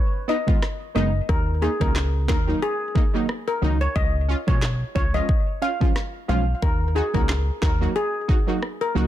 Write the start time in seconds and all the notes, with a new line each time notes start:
0.28 B3 D#4 D#5
0.47 D#3 G#3 B3 F4, kick
0.62 cross-stick, snare
0.95 F#1 D#3 G#3 B3 D#4 D#5
1.29 D#2 A#4, kick
1.61 A#3 D#4 G#4
1.80 C#2 D#3 F#3 A#3 D#4 A#4, kick
1.96 cross-stick, snare, clap
2.28 D#2 A#3 D#4 A#4, kick, snare, clap
2.47 D#3 F#3 A#3 D#4
2.62 G#4
2.95 A#3 D#4, kick
3.13 D#3 F#3 A#3 D#4
3.29 cross-stick
3.48 A#4
3.62 C#2 D#3 F#3 A#3 D#4
3.81 C#5
3.96 C#2 D#5, kick
4.28 C#4 F4
4.47 B1 F3 G#3 C#4 F4 C#5, kick
4.62 snare, clap
4.95 C#2 C#4 F4 C#5, kick
5.13 F3 G#3 C#4 F4 D#5
5.29 kick
5.62 C#4 F4 F5
5.80 F3 G#3 C#4 F4, kick
5.96 cross-stick, snare
6.28 B1 F3 G#3 C#4 F4 F5
6.62 D#2 A#4, kick
6.95 D#4 F#4 G#4
7.14 C#2 F#3 A#3 D#4 F#4 A#4, kick
7.29 cross-stick, snare, clap
7.62 D#2 D#4 F#4 A#4, kick, snare, clap
7.80 F#3 A#3 D#4 F#4
7.96 G#4
8.28 D#4 F#4, kick
8.47 F#3 A#3 D#4 F#4
8.63 cross-stick
8.81 A#4
8.95 C#2 F#3 A#3 D#4 F#4